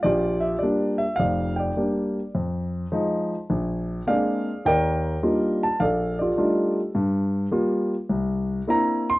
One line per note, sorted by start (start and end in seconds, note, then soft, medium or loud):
0.03 0.54 A#1 medium
0.03 1.16 F4 medium
0.03 1.16 G4 medium
0.03 0.44 D5 medium
0.41 0.59 E5 medium
0.59 1.03 G3 medium
0.59 0.97 D5 medium
0.63 1.04 A#3 soft
0.63 1.04 D4 medium
0.98 1.16 E5 medium
1.16 1.70 F1 medium
1.16 1.70 F2 medium
1.16 1.58 D5 medium
1.16 1.59 F5 medium
1.56 2.31 D5 medium
1.56 2.11 G5 medium
1.77 2.18 G3 medium
1.77 2.19 A#3 medium
1.77 2.19 D4 medium
2.34 2.85 F2 medium
2.92 3.34 F3 medium
2.92 3.34 G#3 soft
2.92 3.34 D#4 medium
3.50 4.00 A#1 medium
4.07 4.49 G#3 medium
4.07 4.49 A#3 medium
4.07 4.49 C4 soft
4.07 4.49 D4 medium
4.07 4.62 G#4 medium
4.07 4.62 D5 medium
4.07 4.67 F5 medium
4.65 5.15 D#2 medium
4.65 5.78 A#4 medium
4.65 5.78 D5 medium
4.65 5.19 G5 loud
5.23 5.64 G3 medium
5.23 5.65 A#3 medium
5.23 5.64 D4 medium
5.23 5.65 D#4 medium
5.23 5.65 F4 medium
5.63 5.80 A5 medium
5.80 6.30 A#1 medium
5.80 6.92 A4 medium
5.80 6.18 D5 medium
5.80 6.17 F5 medium
6.19 6.37 F4 medium
6.19 6.92 G4 soft
6.19 6.73 D5 medium
6.38 6.79 G3 medium
6.38 6.79 A3 soft
6.38 6.79 D4 medium
6.38 6.79 D#4 medium
6.38 6.80 F4 medium
6.95 7.45 G2 medium
7.51 7.94 G3 medium
7.51 7.94 A#3 medium
7.51 7.94 F4 medium
8.10 8.60 C2 medium
8.68 9.09 A#3 medium
8.68 9.09 C4 medium
8.68 9.10 D4 soft
8.68 9.10 E4 medium
8.68 9.10 A#5 loud
9.10 9.15 C6 loud